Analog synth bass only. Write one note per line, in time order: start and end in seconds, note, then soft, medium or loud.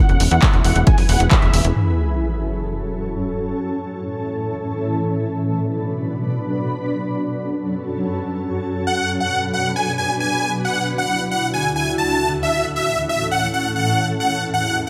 0.09 0.17 E1 medium
0.20 0.29 E1 medium
0.31 0.40 E2 medium
0.53 0.62 E1 medium
0.65 0.73 E1 loud
0.76 0.84 E1 medium
0.98 1.06 F#1 medium
1.09 1.17 E1 loud
1.20 1.28 E1 medium
1.42 1.51 E1 medium
1.53 1.62 E1 loud
1.64 1.73 E1 loud